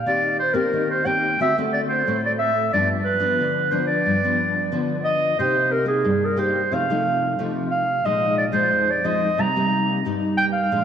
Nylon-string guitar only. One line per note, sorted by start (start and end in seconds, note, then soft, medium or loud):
0.06 0.70 D#3 medium
0.06 0.38 A#3 medium
0.06 0.38 C4 medium
0.06 0.38 G4 medium
0.54 1.00 A#3 medium
0.54 1.00 C4 medium
0.54 1.00 G4 medium
0.73 1.36 D#3 medium
1.05 1.37 A#3 medium
1.05 1.37 C4 medium
1.05 1.37 G4 medium
1.40 2.03 D3 medium
1.40 1.51 A3 medium
1.40 1.52 C4 medium
1.40 1.52 F#4 medium
1.58 2.02 A3 medium
1.58 2.02 C4 medium
1.58 2.02 F#4 medium
2.07 2.70 A2 medium
2.07 2.50 A3 medium
2.07 2.50 C4 medium
2.07 2.50 F#4 medium
2.73 3.37 G2 medium
2.73 3.18 F3 medium
2.73 3.18 B3 medium
2.73 3.18 D4 medium
3.19 3.66 F3 medium
3.19 3.66 B3 medium
3.19 3.67 D4 medium
3.40 4.03 D3 medium
3.71 4.17 F3 medium
3.71 4.17 B3 medium
3.71 4.17 D4 medium
4.06 4.69 G2 medium
4.24 4.68 F3 medium
4.24 4.68 B3 medium
4.24 4.69 D4 medium
4.72 5.36 D3 medium
4.72 5.34 F3 medium
4.72 5.34 B3 medium
4.72 5.34 D4 medium
5.39 6.03 C3 medium
5.39 5.84 A#3 medium
5.39 5.84 D#4 medium
5.39 5.84 G4 medium
5.85 6.32 A#3 medium
5.85 6.32 D#4 medium
6.04 6.69 G2 medium
6.36 6.59 A#3 medium
6.36 6.60 D#4 medium
6.36 6.60 G4 medium
6.71 7.35 C3 medium
6.71 6.83 F3 medium
6.71 6.84 A3 medium
6.71 6.84 D#4 medium
6.90 7.34 F3 medium
6.90 7.35 A3 medium
6.90 7.34 D#4 medium
7.38 8.02 C3 medium
7.38 7.82 F3 medium
7.38 7.82 A3 medium
7.38 7.82 D#4 medium
8.05 8.69 A#2 medium
8.05 8.50 F3 soft
8.05 8.50 G#3 medium
8.05 8.50 D#4 medium
8.52 8.98 F3 medium
8.52 8.99 G#3 medium
8.52 8.99 D#4 medium
8.71 9.35 F2 medium
9.04 9.26 F3 medium
9.04 9.26 G#3 medium
9.04 9.26 D#4 medium
9.38 10.01 C3 medium
9.38 9.48 G3 medium
9.38 9.48 A#3 medium
9.38 9.49 D#4 medium
9.56 10.00 G3 medium
9.56 10.00 A#3 medium
9.56 10.01 D#4 medium
10.05 10.68 G2 medium
10.05 10.66 G3 medium
10.05 10.66 A#3 medium
10.05 10.67 D#4 medium
10.71 10.84 A#2 medium
10.71 10.84 F3 medium
10.71 10.84 G#3 medium
10.71 10.84 D4 medium